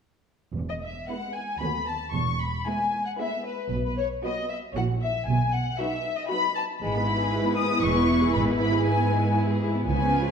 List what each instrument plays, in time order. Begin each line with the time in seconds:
0.55 double bass section E1, cello section E2
0.69 violin section D#5
0.83 violin section E5
1.09 viola section G#3 B3, violin section E4 B4 F#5
1.33 violin section G#5
1.60 double bass section D#2, cello section D#2, viola section A3 B3, violin section F#4 B4 B5
1.87 violin section A5
2.12 double bass section E1, cello section E2, violin section C#6
2.41 violin section B5
2.66 viola section G#3 B3, violin section E4 B4 G#5
3.06 violin section F#5
3.20 viola section G#3 B3, violin section E4 B4 E5
3.46 violin section B4
3.71 double bass section B1, cello section B2
3.85 violin section B4
3.98 violin section C#5
4.24 viola section F#3 B3, violin section F#4 B4 D#5
4.50 violin section E5
4.74 double bass section A#1, cello section A#2, viola section F#3 E4, violin section F#4 C#5 F#5
5.02 violin section E5
5.27 double bass section B1, cello section B2, violin section G#5
5.54 violin section F#5
5.80 viola section F#3 D#4, violin section F#4 B4 E5
6.18 violin section D#5
6.29 viola section F#3 D#4, violin section F#4 B4 B5
6.56 violin section A5
6.81 double bass section G#1, cello section G#2, viola section E3 E4, violin section G#3 B4 B5
6.95 violin section B3
7.08 violin section E4
7.21 violin section G#4
7.33 violin section E4
7.47 violin section B3
7.57 violin section G#3 D#6
7.71 violin section B3
7.83 double bass section E1, cello section E2, violin section G#3 C#6
7.97 violin section B3
8.09 violin section E4
8.23 violin section G#4
8.34 double bass section G#1, cello section G#2, violin section G#3 B5
8.48 violin section B3
8.60 violin section E4 B5
8.73 violin section G#4
8.85 violin section E4 G#5
8.99 violin section B3
9.11 violin section G#3
9.26 violin section B3
9.38 violin section E4
9.51 violin section G#4
9.65 violin section E4
9.78 violin section B3
9.87 double bass section C#2, cello section C#2, viola section F3 C#4, violin section B3 B4 G#5
10.01 violin section C#4
10.14 violin section F4
10.26 violin section G#4